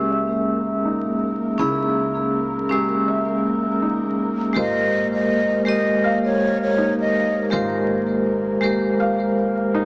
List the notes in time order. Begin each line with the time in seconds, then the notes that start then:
Already playing: C#2 G#3 A#3 C#4 E4 G4 G#4 A#4 E5 E6
0.11 E5
0.85 D#4
1.58 C#2 C#4 E4 G#4 E6
2.69 G#3 C#4 G4 E6
3.08 E5
3.82 D#4
4.53 G#1 G#3 F4 G4 A#4 C5 D#5
5.14 D#5
5.65 G#3 G4 A#4 D#5
6.04 F5
6.25 C#5
6.62 C#5
6.78 D#4
7.00 D#5
7.50 G#1 G#3 F4 G4 A#4 C5
8.61 G#3 G4 A#4 C5
9.00 F5
9.74 D#4